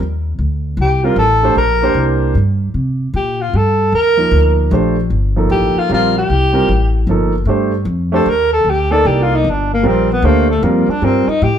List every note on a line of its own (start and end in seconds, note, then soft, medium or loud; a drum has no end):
0.00 0.37 D#2 medium
0.39 0.76 D2 medium
0.77 1.15 C2 medium
0.81 1.06 G4 medium
1.04 1.16 G3 medium
1.04 1.17 C4 medium
1.04 1.18 F4 medium
1.04 1.17 F4 medium
1.04 1.17 A#4 medium
1.16 1.55 A1 medium
1.16 1.55 A4 medium
1.43 1.56 A3 medium
1.43 1.56 D4 medium
1.43 1.56 G4 medium
1.43 1.56 C5 medium
1.55 1.94 A#1 medium
1.55 2.18 A#4 medium
1.82 2.33 A#3 medium
1.82 2.33 D4 medium
1.82 2.34 G4 medium
1.82 2.34 C5 medium
1.94 2.33 C2 medium
2.35 2.73 G2 medium
2.74 3.13 C3 medium
3.14 3.52 A#2 medium
3.14 3.43 G4 medium
3.41 3.58 F4 medium
3.53 3.92 G2 medium
3.53 3.94 A4 medium
3.92 4.31 D#2 medium
3.92 4.55 A#4 loud
4.17 4.69 F3 medium
4.17 4.69 A#3 soft
4.17 4.69 D#4 medium
4.17 4.69 A#4 medium
4.31 4.70 D2 medium
4.71 5.10 A#1 medium
4.71 4.94 A3 medium
4.71 4.95 D4 medium
4.71 4.95 G4 medium
4.71 4.95 C5 medium
5.10 5.49 G1 medium
5.36 5.87 F3 medium
5.36 5.87 A#3 medium
5.36 5.88 D#4 medium
5.36 5.88 A4 medium
5.50 5.74 A1 medium
5.50 5.80 G4 medium
5.75 5.91 F4 medium
5.75 muted upright bass stroke soft
5.89 6.28 A#1 medium
5.89 6.13 G3 medium
5.89 6.13 C4 medium
5.89 6.13 F4 medium
5.89 6.14 A#4 medium
5.94 6.16 F4 medium
6.18 7.06 G4 medium
6.30 6.68 C2 medium
6.53 6.67 G3 medium
6.53 6.67 C4 medium
6.53 6.67 F4 soft
6.53 6.67 A#4 medium
6.68 7.06 A1 medium
7.07 7.45 G1 medium
7.07 7.31 F3 medium
7.07 7.32 A#3 medium
7.07 7.32 D#4 medium
7.07 7.32 A4 medium
7.45 7.85 G2 medium
7.45 7.70 A3 medium
7.45 7.71 D4 medium
7.45 7.71 G4 medium
7.50 7.71 C5 medium
7.85 8.25 F2 medium
8.12 8.25 A3 medium
8.12 8.25 D4 medium
8.12 8.26 G4 medium
8.12 8.31 A4 medium
8.12 8.26 C5 medium
8.26 8.64 D#2 medium
8.26 8.52 A#4 medium
8.53 8.71 A4 medium
8.64 9.04 D2 medium
8.70 8.93 G4 medium
8.91 9.42 A#3 medium
8.91 9.42 D#4 medium
8.91 9.08 A4 loud
8.91 9.42 A4 medium
8.91 9.43 D5 medium
9.05 9.44 C2 medium
9.05 9.24 G4 medium
9.22 9.37 F4 medium
9.36 9.51 D#4 medium
9.44 9.83 G1 medium
9.50 9.73 D4 medium
9.74 9.89 A#3 medium
9.83 10.22 A#1 medium
9.83 10.06 G3 medium
9.83 10.07 C4 medium
9.83 10.07 F4 medium
9.83 10.07 A#4 medium
9.87 10.11 C4 medium
10.12 10.26 B3 medium
10.22 10.61 D2 medium
10.22 10.46 A3 medium
10.22 10.49 A#3 medium
10.22 10.47 D4 medium
10.22 10.47 G4 medium
10.22 10.47 C5 medium
10.50 10.65 A3 medium
10.63 10.86 F2 medium
10.63 10.86 G3 medium
10.63 10.91 A#3 medium
10.63 10.86 C4 medium
10.63 10.87 F4 medium
10.63 10.87 A#4 medium
10.88 11.06 D4 medium
10.88 muted upright bass stroke soft
11.02 11.26 G2 medium
11.02 11.25 G3 medium
11.02 11.25 C4 medium
11.02 11.30 C4 medium
11.02 11.25 F4 soft
11.02 11.26 A#4 medium
11.27 11.45 D#4 medium
11.27 muted upright bass stroke soft
11.42 11.59 A2 medium
11.42 11.59 G4 medium